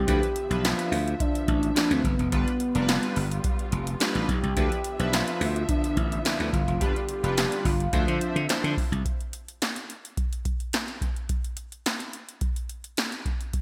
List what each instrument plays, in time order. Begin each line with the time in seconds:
Already playing: string section D3 B3, soft synth lead G4
0.07 slap bass D2, analog polysynth F3 D4 E4 B4, string section F3 E5, kick, closed hi-hat
0.23 closed hi-hat
0.36 closed hi-hat
0.50 slap bass B1, analog polysynth F3 D4 B4 E5, closed hi-hat
0.64 soft synth lead F4, snare, clap, closed hi-hat
0.79 closed hi-hat
0.92 slap bass D2, open hi-hat
1.08 closed hi-hat
1.20 soft synth lead D4, kick, closed hi-hat
1.35 closed hi-hat
1.48 slap bass A1, soft synth lead D4, kick, closed hi-hat
1.63 closed hi-hat
1.75 analog polysynth F3 D4 E4 B4, soft synth lead D4, snare, clap, closed hi-hat
1.91 slap bass D2, soft synth lead C4, closed hi-hat
2.04 slap bass G1, soft synth lead B3, kick, closed hi-hat
2.19 slap bass F1, closed hi-hat
2.32 slap bass G1, analog polysynth G3 D4 F4 B4, string section G3 B3 F4, kick, closed hi-hat
2.48 closed hi-hat
2.60 closed hi-hat
2.75 slap bass F1, analog polysynth G3 D4 F4 A#4, closed hi-hat
2.82 analog polysynth B4
2.89 snare, clap, closed hi-hat
3.03 closed hi-hat
3.16 slap bass G1, open hi-hat
3.31 closed hi-hat
3.44 kick, closed hi-hat
3.59 closed hi-hat
3.72 slap bass F1, closed hi-hat
3.87 closed hi-hat
4.00 analog polysynth G3 D4 F4 B4, snare, clap, closed hi-hat
4.15 slap bass A1, closed hi-hat
4.29 slap bass B1, soft synth lead G4, kick, closed hi-hat
4.43 slap bass C2, closed hi-hat
4.56 slap bass D2, string section D3 F3 B3 E5, analog polysynth F3 D4 E4 B4, kick, closed hi-hat
4.72 closed hi-hat
4.84 closed hi-hat
4.99 slap bass B1, analog polysynth F3 D4 B4 E5, closed hi-hat
5.13 soft synth lead F4, snare, clap, closed hi-hat
5.28 closed hi-hat
5.41 slap bass D2, open hi-hat
5.56 closed hi-hat
5.69 soft synth lead D4, kick, closed hi-hat
5.84 closed hi-hat
5.97 slap bass A1, soft synth lead E4, kick, closed hi-hat
6.12 closed hi-hat
6.25 analog polysynth F3 D4 E4 B4, snare, clap, closed hi-hat
6.40 slap bass D2, closed hi-hat
6.53 slap bass G1, soft synth lead F4, kick, closed hi-hat
6.68 slap bass F1, closed hi-hat
6.80 slap bass G1, analog polysynth G3 D4 F4 B4, string section G3 F4, soft synth lead G4, kick, closed hi-hat
6.96 closed hi-hat
7.09 closed hi-hat
7.23 slap bass F1, analog polysynth G3 D4 F4 B4, closed hi-hat
7.38 snare, clap, closed hi-hat
7.52 closed hi-hat
7.65 slap bass G1, soft synth lead F4, kick, open hi-hat
7.80 closed hi-hat
7.92 slap bass D2, analog polysynth E3 D4 C5 E5, string section F3 C4 E5, kick, closed hi-hat
7.99 analog polysynth F3
8.08 slap bass D3, closed hi-hat
8.21 closed hi-hat
8.36 slap bass D3, closed hi-hat
8.49 analog polysynth F3 D4 E4 C5, snare, clap, closed hi-hat
8.64 slap bass D3, closed hi-hat
8.77 kick, open hi-hat
8.92 slap bass C2, closed hi-hat
9.05 kick, closed hi-hat
9.21 closed hi-hat
9.33 closed hi-hat
9.48 closed hi-hat
9.62 snare, clap, closed hi-hat
9.76 closed hi-hat
9.90 closed hi-hat
10.05 closed hi-hat
10.17 kick, closed hi-hat
10.33 closed hi-hat
10.45 kick, closed hi-hat
10.60 closed hi-hat
10.73 snare, clap, closed hi-hat
10.88 closed hi-hat
11.01 kick, closed hi-hat
11.16 closed hi-hat
11.29 kick, closed hi-hat
11.44 closed hi-hat
11.57 closed hi-hat
11.72 closed hi-hat
11.86 snare, clap, closed hi-hat
12.00 closed hi-hat
12.13 closed hi-hat
12.29 closed hi-hat
12.41 kick, closed hi-hat
12.56 closed hi-hat
12.69 closed hi-hat
12.84 closed hi-hat
12.97 snare, clap, closed hi-hat
13.12 closed hi-hat
13.26 kick, closed hi-hat
13.41 closed hi-hat
13.53 kick, closed hi-hat